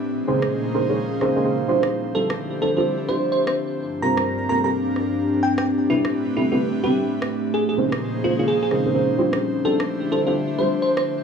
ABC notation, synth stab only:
X:1
M:4/4
L:1/16
Q:"Swing 16ths" 1/4=128
K:Dm
V:1 name="Synth stab"
z2 [_D_E_ABc]4 [DEABc] [DEAB_d] z2 [DEABc] [DEABc] [DEABc] z [=D=EFGc]2- | [DEFGc]2 [DEFGc] z3 [DEFGc] [DEFGc] z2 [DEFGc] z4 z | z2 [CFGBc]4 [CFGAB] [CFGAB] z8 | z2 [CDGA=B] z3 [CDGAB] [CDGAB] z2 [CDGAB] z4 z |
z2 [_D_E_ABc]4 [DEABc] [DEAB_d] z2 [DEABc] [DEABc] [DEABc] z [=D=EFGc]2- | [DEFGc]2 [DEFGc] z3 [DEFGc] [DEFGc] z2 [DEFGc] z4 z |]